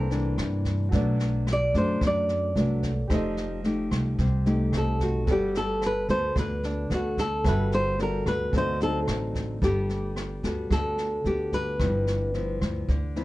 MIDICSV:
0, 0, Header, 1, 6, 480
1, 0, Start_track
1, 0, Key_signature, 1, "major"
1, 0, Tempo, 543478
1, 816, Time_signature, 4, 2, 24, 8
1, 11697, End_track
2, 0, Start_track
2, 0, Title_t, "Grand piano"
2, 0, Program_c, 0, 0
2, 785, Note_on_c, 0, 66, 58
2, 805, Note_on_c, 0, 69, 46
2, 821, Note_on_c, 0, 71, 49
2, 841, Note_on_c, 0, 74, 57
2, 985, Control_c, 0, 64, 127
2, 2212, Note_off_c, 0, 66, 0
2, 2221, Note_off_c, 0, 69, 0
2, 2230, Note_off_c, 0, 71, 0
2, 2240, Note_off_c, 0, 74, 0
2, 2251, Note_on_c, 0, 66, 37
2, 2261, Note_on_c, 0, 69, 34
2, 2268, Note_on_c, 0, 71, 34
2, 2278, Note_on_c, 0, 74, 42
2, 2718, Note_on_c, 0, 67, 52
2, 2723, Note_off_c, 0, 69, 0
2, 2733, Note_off_c, 0, 66, 0
2, 2736, Note_on_c, 0, 69, 53
2, 2742, Note_off_c, 0, 71, 0
2, 2747, Note_off_c, 0, 74, 0
2, 2747, Control_c, 0, 64, 0
2, 2751, Note_on_c, 0, 72, 53
2, 2772, Note_on_c, 0, 75, 63
2, 2900, Control_c, 0, 64, 127
2, 4137, Note_off_c, 0, 67, 0
2, 4147, Note_off_c, 0, 69, 0
2, 4154, Note_off_c, 0, 72, 0
2, 4165, Note_off_c, 0, 75, 0
2, 4166, Note_on_c, 0, 67, 35
2, 4175, Note_on_c, 0, 69, 34
2, 4183, Note_on_c, 0, 72, 34
2, 4192, Note_on_c, 0, 75, 40
2, 4631, Note_on_c, 0, 66, 47
2, 4634, Note_off_c, 0, 69, 0
2, 4647, Note_on_c, 0, 69, 44
2, 4650, Note_off_c, 0, 67, 0
2, 4659, Note_off_c, 0, 72, 0
2, 4663, Note_off_c, 0, 75, 0
2, 4666, Control_c, 0, 64, 0
2, 4667, Note_on_c, 0, 71, 46
2, 4687, Note_on_c, 0, 74, 49
2, 4801, Control_c, 0, 64, 127
2, 6526, Note_off_c, 0, 66, 0
2, 6535, Note_off_c, 0, 69, 0
2, 6545, Note_off_c, 0, 71, 0
2, 6555, Note_off_c, 0, 74, 0
2, 6570, Note_on_c, 0, 66, 46
2, 6575, Note_on_c, 0, 69, 45
2, 6584, Note_on_c, 0, 71, 40
2, 6595, Note_on_c, 0, 76, 57
2, 7036, Note_off_c, 0, 66, 0
2, 7043, Note_off_c, 0, 69, 0
2, 7049, Note_on_c, 0, 66, 37
2, 7055, Note_off_c, 0, 71, 0
2, 7057, Note_on_c, 0, 69, 34
2, 7064, Note_off_c, 0, 76, 0
2, 7068, Note_on_c, 0, 71, 31
2, 7074, Note_on_c, 0, 74, 42
2, 7505, Note_off_c, 0, 66, 0
2, 7518, Note_on_c, 0, 66, 52
2, 7522, Note_off_c, 0, 69, 0
2, 7535, Note_on_c, 0, 69, 46
2, 7541, Note_off_c, 0, 71, 0
2, 7544, Note_off_c, 0, 74, 0
2, 7546, Control_c, 0, 64, 0
2, 7554, Note_on_c, 0, 72, 47
2, 7571, Note_on_c, 0, 75, 52
2, 7684, Control_c, 0, 64, 127
2, 8467, Note_off_c, 0, 66, 0
2, 8475, Note_off_c, 0, 69, 0
2, 8485, Note_off_c, 0, 72, 0
2, 8494, Note_off_c, 0, 75, 0
2, 8505, Control_c, 0, 64, 0
2, 11697, End_track
3, 0, Start_track
3, 0, Title_t, "Nylon-string guitar"
3, 0, Program_c, 1, 24
3, 0, Note_on_c, 1, 70, 74
3, 325, Note_off_c, 1, 70, 0
3, 1348, Note_on_c, 1, 74, 90
3, 1555, Note_off_c, 1, 74, 0
3, 1568, Note_on_c, 1, 72, 77
3, 1785, Note_off_c, 1, 72, 0
3, 1827, Note_on_c, 1, 74, 73
3, 2250, Note_off_c, 1, 74, 0
3, 4217, Note_on_c, 1, 69, 70
3, 4429, Note_off_c, 1, 69, 0
3, 4440, Note_on_c, 1, 66, 70
3, 4661, Note_off_c, 1, 66, 0
3, 4699, Note_on_c, 1, 67, 61
3, 4910, Note_off_c, 1, 67, 0
3, 4922, Note_on_c, 1, 69, 85
3, 5142, Note_off_c, 1, 69, 0
3, 5178, Note_on_c, 1, 71, 78
3, 5386, Note_off_c, 1, 71, 0
3, 5390, Note_on_c, 1, 72, 88
3, 5615, Note_off_c, 1, 72, 0
3, 5645, Note_on_c, 1, 71, 75
3, 5863, Note_off_c, 1, 71, 0
3, 5869, Note_on_c, 1, 62, 43
3, 6094, Note_off_c, 1, 62, 0
3, 6129, Note_on_c, 1, 66, 65
3, 6345, Note_off_c, 1, 66, 0
3, 6354, Note_on_c, 1, 69, 85
3, 6577, Note_off_c, 1, 69, 0
3, 6610, Note_on_c, 1, 71, 73
3, 6825, Note_off_c, 1, 71, 0
3, 6840, Note_on_c, 1, 72, 98
3, 7060, Note_off_c, 1, 72, 0
3, 7088, Note_on_c, 1, 70, 73
3, 7304, Note_off_c, 1, 70, 0
3, 7313, Note_on_c, 1, 71, 74
3, 7536, Note_off_c, 1, 71, 0
3, 7574, Note_on_c, 1, 72, 88
3, 7787, Note_off_c, 1, 72, 0
3, 7798, Note_on_c, 1, 69, 86
3, 7935, Note_off_c, 1, 69, 0
3, 8515, Note_on_c, 1, 67, 67
3, 9470, Note_on_c, 1, 69, 76
3, 9493, Note_off_c, 1, 67, 0
3, 9953, Note_on_c, 1, 67, 73
3, 9957, Note_off_c, 1, 69, 0
3, 10168, Note_off_c, 1, 67, 0
3, 10193, Note_on_c, 1, 71, 86
3, 11110, Note_off_c, 1, 71, 0
3, 11697, End_track
4, 0, Start_track
4, 0, Title_t, "Nylon-string guitar"
4, 0, Program_c, 2, 24
4, 0, Note_on_c, 2, 48, 51
4, 90, Note_on_c, 2, 52, 57
4, 95, Note_on_c, 2, 58, 55
4, 99, Note_on_c, 2, 62, 73
4, 775, Note_off_c, 2, 52, 0
4, 776, Note_off_c, 2, 58, 0
4, 779, Note_off_c, 2, 62, 0
4, 791, Note_off_c, 2, 48, 0
4, 816, Note_on_c, 2, 54, 54
4, 817, Note_on_c, 2, 47, 51
4, 820, Note_on_c, 2, 57, 52
4, 824, Note_on_c, 2, 62, 58
4, 1292, Note_off_c, 2, 54, 0
4, 1296, Note_off_c, 2, 57, 0
4, 1296, Note_off_c, 2, 62, 0
4, 1537, Note_on_c, 2, 54, 58
4, 1543, Note_on_c, 2, 57, 57
4, 1547, Note_on_c, 2, 62, 61
4, 1753, Note_off_c, 2, 47, 0
4, 1779, Note_on_c, 2, 42, 51
4, 2218, Note_off_c, 2, 54, 0
4, 2221, Note_off_c, 2, 57, 0
4, 2223, Note_off_c, 2, 62, 0
4, 2256, Note_on_c, 2, 54, 52
4, 2262, Note_on_c, 2, 57, 50
4, 2262, Note_on_c, 2, 62, 54
4, 2566, Note_off_c, 2, 54, 0
4, 2567, Note_off_c, 2, 57, 0
4, 2568, Note_off_c, 2, 62, 0
4, 2713, Note_off_c, 2, 42, 0
4, 2736, Note_on_c, 2, 53, 54
4, 2736, Note_on_c, 2, 57, 52
4, 2739, Note_on_c, 2, 63, 57
4, 2746, Note_on_c, 2, 67, 56
4, 3177, Note_off_c, 2, 57, 0
4, 3180, Note_off_c, 2, 63, 0
4, 3181, Note_off_c, 2, 67, 0
4, 3225, Note_on_c, 2, 57, 48
4, 3230, Note_on_c, 2, 63, 45
4, 3230, Note_on_c, 2, 67, 52
4, 3672, Note_off_c, 2, 53, 0
4, 3698, Note_off_c, 2, 57, 0
4, 3698, Note_off_c, 2, 63, 0
4, 3700, Note_off_c, 2, 67, 0
4, 3705, Note_on_c, 2, 48, 53
4, 3939, Note_on_c, 2, 57, 62
4, 3944, Note_on_c, 2, 63, 58
4, 3948, Note_on_c, 2, 67, 67
4, 4619, Note_off_c, 2, 57, 0
4, 4620, Note_off_c, 2, 63, 0
4, 4623, Note_off_c, 2, 67, 0
4, 4636, Note_off_c, 2, 48, 0
4, 4655, Note_on_c, 2, 55, 59
4, 4655, Note_on_c, 2, 59, 58
4, 4658, Note_on_c, 2, 66, 52
4, 4660, Note_on_c, 2, 69, 59
4, 5336, Note_off_c, 2, 59, 0
4, 5337, Note_off_c, 2, 66, 0
4, 5339, Note_off_c, 2, 69, 0
4, 5379, Note_on_c, 2, 59, 52
4, 5381, Note_on_c, 2, 66, 48
4, 5388, Note_on_c, 2, 69, 60
4, 5591, Note_off_c, 2, 55, 0
4, 5612, Note_on_c, 2, 50, 50
4, 6058, Note_off_c, 2, 59, 0
4, 6060, Note_off_c, 2, 66, 0
4, 6061, Note_off_c, 2, 69, 0
4, 6099, Note_on_c, 2, 59, 54
4, 6103, Note_on_c, 2, 66, 52
4, 6105, Note_on_c, 2, 69, 56
4, 6406, Note_off_c, 2, 59, 0
4, 6406, Note_off_c, 2, 66, 0
4, 6409, Note_off_c, 2, 69, 0
4, 6549, Note_off_c, 2, 50, 0
4, 6572, Note_on_c, 2, 59, 56
4, 6575, Note_on_c, 2, 55, 57
4, 6578, Note_on_c, 2, 66, 54
4, 6580, Note_on_c, 2, 69, 61
4, 7014, Note_off_c, 2, 59, 0
4, 7017, Note_off_c, 2, 66, 0
4, 7018, Note_off_c, 2, 69, 0
4, 7052, Note_on_c, 2, 59, 53
4, 7056, Note_on_c, 2, 66, 54
4, 7060, Note_on_c, 2, 69, 55
4, 7510, Note_off_c, 2, 55, 0
4, 7514, Note_off_c, 2, 59, 0
4, 7515, Note_off_c, 2, 66, 0
4, 7518, Note_off_c, 2, 69, 0
4, 7538, Note_on_c, 2, 50, 53
4, 7539, Note_on_c, 2, 54, 49
4, 7542, Note_on_c, 2, 60, 53
4, 7547, Note_on_c, 2, 63, 56
4, 7677, Note_off_c, 2, 54, 0
4, 7679, Note_off_c, 2, 60, 0
4, 7681, Note_off_c, 2, 63, 0
4, 7781, Note_on_c, 2, 54, 58
4, 7785, Note_on_c, 2, 60, 66
4, 7789, Note_on_c, 2, 63, 68
4, 8459, Note_off_c, 2, 54, 0
4, 8461, Note_off_c, 2, 60, 0
4, 8462, Note_off_c, 2, 63, 0
4, 8472, Note_off_c, 2, 50, 0
4, 8493, Note_on_c, 2, 55, 54
4, 8497, Note_on_c, 2, 59, 47
4, 8502, Note_on_c, 2, 69, 57
4, 9176, Note_off_c, 2, 59, 0
4, 9180, Note_off_c, 2, 69, 0
4, 9218, Note_on_c, 2, 59, 50
4, 9223, Note_on_c, 2, 66, 57
4, 9228, Note_on_c, 2, 69, 53
4, 9430, Note_off_c, 2, 55, 0
4, 9462, Note_on_c, 2, 50, 49
4, 9898, Note_off_c, 2, 59, 0
4, 9901, Note_off_c, 2, 66, 0
4, 9903, Note_off_c, 2, 69, 0
4, 9942, Note_on_c, 2, 59, 47
4, 9946, Note_on_c, 2, 66, 48
4, 9951, Note_on_c, 2, 69, 56
4, 10380, Note_off_c, 2, 59, 0
4, 10382, Note_off_c, 2, 66, 0
4, 10385, Note_off_c, 2, 69, 0
4, 10395, Note_off_c, 2, 50, 0
4, 10424, Note_on_c, 2, 43, 50
4, 10426, Note_on_c, 2, 53, 51
4, 10430, Note_on_c, 2, 59, 55
4, 10435, Note_on_c, 2, 64, 59
4, 10862, Note_off_c, 2, 53, 0
4, 10865, Note_off_c, 2, 59, 0
4, 10866, Note_off_c, 2, 64, 0
4, 10899, Note_on_c, 2, 53, 49
4, 10904, Note_on_c, 2, 59, 45
4, 10909, Note_on_c, 2, 64, 56
4, 11357, Note_off_c, 2, 43, 0
4, 11375, Note_off_c, 2, 53, 0
4, 11377, Note_off_c, 2, 59, 0
4, 11380, Note_off_c, 2, 64, 0
4, 11384, Note_on_c, 2, 50, 52
4, 11624, Note_on_c, 2, 53, 58
4, 11628, Note_on_c, 2, 59, 57
4, 11630, Note_on_c, 2, 64, 63
4, 11697, Note_off_c, 2, 50, 0
4, 11697, Note_off_c, 2, 53, 0
4, 11697, Note_off_c, 2, 59, 0
4, 11697, Note_off_c, 2, 64, 0
4, 11697, End_track
5, 0, Start_track
5, 0, Title_t, "Upright bass"
5, 0, Program_c, 3, 32
5, 0, Note_on_c, 3, 36, 79
5, 302, Note_off_c, 3, 36, 0
5, 336, Note_on_c, 3, 43, 85
5, 817, Note_on_c, 3, 35, 79
5, 830, Note_off_c, 3, 43, 0
5, 1501, Note_off_c, 3, 35, 0
5, 1539, Note_on_c, 3, 42, 80
5, 1761, Note_off_c, 3, 42, 0
5, 1779, Note_on_c, 3, 42, 82
5, 2224, Note_off_c, 3, 42, 0
5, 2257, Note_on_c, 3, 36, 88
5, 2738, Note_off_c, 3, 36, 0
5, 2738, Note_on_c, 3, 29, 84
5, 3421, Note_off_c, 3, 29, 0
5, 3459, Note_on_c, 3, 36, 85
5, 3681, Note_off_c, 3, 36, 0
5, 3700, Note_on_c, 3, 36, 89
5, 4144, Note_off_c, 3, 36, 0
5, 4174, Note_on_c, 3, 36, 85
5, 4657, Note_off_c, 3, 36, 0
5, 4657, Note_on_c, 3, 31, 91
5, 5340, Note_off_c, 3, 31, 0
5, 5375, Note_on_c, 3, 38, 84
5, 5598, Note_off_c, 3, 38, 0
5, 5616, Note_on_c, 3, 38, 80
5, 6062, Note_off_c, 3, 38, 0
5, 6094, Note_on_c, 3, 38, 89
5, 6574, Note_on_c, 3, 31, 92
5, 6587, Note_off_c, 3, 38, 0
5, 7258, Note_off_c, 3, 31, 0
5, 7294, Note_on_c, 3, 38, 84
5, 7517, Note_off_c, 3, 38, 0
5, 7534, Note_on_c, 3, 38, 88
5, 7980, Note_off_c, 3, 38, 0
5, 8014, Note_on_c, 3, 33, 84
5, 8461, Note_off_c, 3, 33, 0
5, 8494, Note_on_c, 3, 31, 84
5, 9179, Note_off_c, 3, 31, 0
5, 9217, Note_on_c, 3, 38, 77
5, 9439, Note_off_c, 3, 38, 0
5, 9454, Note_on_c, 3, 38, 81
5, 9901, Note_off_c, 3, 38, 0
5, 9930, Note_on_c, 3, 38, 81
5, 10418, Note_on_c, 3, 31, 88
5, 10431, Note_off_c, 3, 38, 0
5, 11102, Note_off_c, 3, 31, 0
5, 11141, Note_on_c, 3, 38, 80
5, 11362, Note_off_c, 3, 38, 0
5, 11381, Note_on_c, 3, 38, 75
5, 11697, Note_off_c, 3, 38, 0
5, 11697, End_track
6, 0, Start_track
6, 0, Title_t, "Drums"
6, 95, Note_on_c, 9, 38, 21
6, 183, Note_off_c, 9, 38, 0
6, 334, Note_on_c, 9, 37, 56
6, 334, Note_on_c, 9, 38, 23
6, 423, Note_off_c, 9, 37, 0
6, 423, Note_off_c, 9, 38, 0
6, 573, Note_on_c, 9, 38, 25
6, 575, Note_on_c, 9, 36, 24
6, 661, Note_off_c, 9, 38, 0
6, 664, Note_off_c, 9, 36, 0
6, 811, Note_on_c, 9, 38, 23
6, 816, Note_on_c, 9, 36, 59
6, 900, Note_off_c, 9, 38, 0
6, 904, Note_off_c, 9, 36, 0
6, 1056, Note_on_c, 9, 38, 23
6, 1144, Note_off_c, 9, 38, 0
6, 1297, Note_on_c, 9, 37, 51
6, 1297, Note_on_c, 9, 38, 22
6, 1386, Note_off_c, 9, 37, 0
6, 1386, Note_off_c, 9, 38, 0
6, 1539, Note_on_c, 9, 36, 23
6, 1540, Note_on_c, 9, 38, 22
6, 1627, Note_off_c, 9, 36, 0
6, 1628, Note_off_c, 9, 38, 0
6, 1778, Note_on_c, 9, 37, 55
6, 1778, Note_on_c, 9, 38, 21
6, 1779, Note_on_c, 9, 36, 56
6, 1866, Note_off_c, 9, 37, 0
6, 1866, Note_off_c, 9, 38, 0
6, 1867, Note_off_c, 9, 36, 0
6, 2021, Note_on_c, 9, 38, 20
6, 2109, Note_off_c, 9, 38, 0
6, 2260, Note_on_c, 9, 38, 22
6, 2349, Note_off_c, 9, 38, 0
6, 2497, Note_on_c, 9, 38, 24
6, 2499, Note_on_c, 9, 36, 24
6, 2586, Note_off_c, 9, 38, 0
6, 2588, Note_off_c, 9, 36, 0
6, 2736, Note_on_c, 9, 37, 58
6, 2736, Note_on_c, 9, 38, 22
6, 2739, Note_on_c, 9, 36, 62
6, 2825, Note_off_c, 9, 37, 0
6, 2825, Note_off_c, 9, 38, 0
6, 2827, Note_off_c, 9, 36, 0
6, 2976, Note_on_c, 9, 38, 24
6, 3064, Note_off_c, 9, 38, 0
6, 3216, Note_on_c, 9, 38, 21
6, 3304, Note_off_c, 9, 38, 0
6, 3456, Note_on_c, 9, 37, 57
6, 3456, Note_on_c, 9, 38, 22
6, 3458, Note_on_c, 9, 36, 22
6, 3545, Note_off_c, 9, 37, 0
6, 3545, Note_off_c, 9, 38, 0
6, 3547, Note_off_c, 9, 36, 0
6, 3695, Note_on_c, 9, 38, 25
6, 3698, Note_on_c, 9, 36, 60
6, 3783, Note_off_c, 9, 38, 0
6, 3787, Note_off_c, 9, 36, 0
6, 3938, Note_on_c, 9, 38, 23
6, 4026, Note_off_c, 9, 38, 0
6, 4176, Note_on_c, 9, 37, 57
6, 4176, Note_on_c, 9, 38, 23
6, 4264, Note_off_c, 9, 37, 0
6, 4264, Note_off_c, 9, 38, 0
6, 4417, Note_on_c, 9, 36, 24
6, 4419, Note_on_c, 9, 38, 25
6, 4505, Note_off_c, 9, 36, 0
6, 4507, Note_off_c, 9, 38, 0
6, 4655, Note_on_c, 9, 38, 25
6, 4657, Note_on_c, 9, 36, 57
6, 4744, Note_off_c, 9, 38, 0
6, 4745, Note_off_c, 9, 36, 0
6, 4898, Note_on_c, 9, 38, 23
6, 4986, Note_off_c, 9, 38, 0
6, 5137, Note_on_c, 9, 37, 50
6, 5137, Note_on_c, 9, 38, 21
6, 5226, Note_off_c, 9, 37, 0
6, 5226, Note_off_c, 9, 38, 0
6, 5376, Note_on_c, 9, 36, 20
6, 5376, Note_on_c, 9, 38, 21
6, 5464, Note_off_c, 9, 36, 0
6, 5464, Note_off_c, 9, 38, 0
6, 5616, Note_on_c, 9, 36, 58
6, 5617, Note_on_c, 9, 37, 57
6, 5617, Note_on_c, 9, 38, 24
6, 5704, Note_off_c, 9, 36, 0
6, 5705, Note_off_c, 9, 37, 0
6, 5705, Note_off_c, 9, 38, 0
6, 5858, Note_on_c, 9, 38, 22
6, 5946, Note_off_c, 9, 38, 0
6, 6098, Note_on_c, 9, 38, 25
6, 6187, Note_off_c, 9, 38, 0
6, 6336, Note_on_c, 9, 36, 25
6, 6340, Note_on_c, 9, 38, 24
6, 6424, Note_off_c, 9, 36, 0
6, 6428, Note_off_c, 9, 38, 0
6, 6575, Note_on_c, 9, 36, 57
6, 6575, Note_on_c, 9, 37, 57
6, 6575, Note_on_c, 9, 38, 24
6, 6664, Note_off_c, 9, 36, 0
6, 6664, Note_off_c, 9, 37, 0
6, 6664, Note_off_c, 9, 38, 0
6, 6817, Note_on_c, 9, 38, 23
6, 6905, Note_off_c, 9, 38, 0
6, 7059, Note_on_c, 9, 38, 21
6, 7147, Note_off_c, 9, 38, 0
6, 7294, Note_on_c, 9, 36, 21
6, 7297, Note_on_c, 9, 37, 52
6, 7297, Note_on_c, 9, 38, 23
6, 7383, Note_off_c, 9, 36, 0
6, 7385, Note_off_c, 9, 37, 0
6, 7385, Note_off_c, 9, 38, 0
6, 7534, Note_on_c, 9, 36, 59
6, 7535, Note_on_c, 9, 38, 24
6, 7622, Note_off_c, 9, 36, 0
6, 7623, Note_off_c, 9, 38, 0
6, 7776, Note_on_c, 9, 38, 22
6, 7864, Note_off_c, 9, 38, 0
6, 8015, Note_on_c, 9, 37, 59
6, 8015, Note_on_c, 9, 38, 26
6, 8103, Note_off_c, 9, 37, 0
6, 8103, Note_off_c, 9, 38, 0
6, 8255, Note_on_c, 9, 36, 25
6, 8259, Note_on_c, 9, 38, 25
6, 8344, Note_off_c, 9, 36, 0
6, 8348, Note_off_c, 9, 38, 0
6, 8495, Note_on_c, 9, 36, 56
6, 8498, Note_on_c, 9, 38, 23
6, 8583, Note_off_c, 9, 36, 0
6, 8586, Note_off_c, 9, 38, 0
6, 8738, Note_on_c, 9, 38, 20
6, 8826, Note_off_c, 9, 38, 0
6, 8976, Note_on_c, 9, 37, 53
6, 8976, Note_on_c, 9, 38, 21
6, 9065, Note_off_c, 9, 37, 0
6, 9065, Note_off_c, 9, 38, 0
6, 9215, Note_on_c, 9, 36, 20
6, 9217, Note_on_c, 9, 38, 22
6, 9304, Note_off_c, 9, 36, 0
6, 9305, Note_off_c, 9, 38, 0
6, 9456, Note_on_c, 9, 36, 53
6, 9456, Note_on_c, 9, 37, 55
6, 9456, Note_on_c, 9, 38, 23
6, 9544, Note_off_c, 9, 36, 0
6, 9545, Note_off_c, 9, 37, 0
6, 9545, Note_off_c, 9, 38, 0
6, 9696, Note_on_c, 9, 38, 20
6, 9785, Note_off_c, 9, 38, 0
6, 9939, Note_on_c, 9, 38, 22
6, 10027, Note_off_c, 9, 38, 0
6, 10178, Note_on_c, 9, 36, 24
6, 10179, Note_on_c, 9, 38, 23
6, 10267, Note_off_c, 9, 36, 0
6, 10267, Note_off_c, 9, 38, 0
6, 10417, Note_on_c, 9, 37, 57
6, 10417, Note_on_c, 9, 38, 23
6, 10419, Note_on_c, 9, 36, 54
6, 10506, Note_off_c, 9, 37, 0
6, 10506, Note_off_c, 9, 38, 0
6, 10507, Note_off_c, 9, 36, 0
6, 10660, Note_on_c, 9, 38, 23
6, 10748, Note_off_c, 9, 38, 0
6, 10900, Note_on_c, 9, 38, 20
6, 10988, Note_off_c, 9, 38, 0
6, 11141, Note_on_c, 9, 36, 20
6, 11142, Note_on_c, 9, 37, 55
6, 11142, Note_on_c, 9, 38, 22
6, 11229, Note_off_c, 9, 36, 0
6, 11230, Note_off_c, 9, 37, 0
6, 11230, Note_off_c, 9, 38, 0
6, 11381, Note_on_c, 9, 36, 57
6, 11381, Note_on_c, 9, 38, 21
6, 11470, Note_off_c, 9, 36, 0
6, 11470, Note_off_c, 9, 38, 0
6, 11622, Note_on_c, 9, 38, 20
6, 11697, Note_off_c, 9, 38, 0
6, 11697, End_track
0, 0, End_of_file